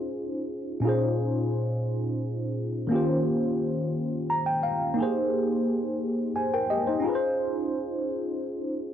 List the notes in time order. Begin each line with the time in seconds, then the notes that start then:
Already playing: C#4 D#4 F4 G#4 C5
0.80 A#2 C#4 D#4
0.85 F4 G#4 C5
2.87 D#3 A#3 C#4
2.92 F4 G4 C5
4.30 A#5
4.46 G5
4.63 F5
4.94 A#3 D#4
4.98 G4 G#4
5.02 C5
6.36 C5 G#5
6.54 A#4 G5
6.70 G4 D#5
6.87 D#4 C5
7.00 C#4 D#4
7.04 F4 G#4
7.09 B4
7.15 C5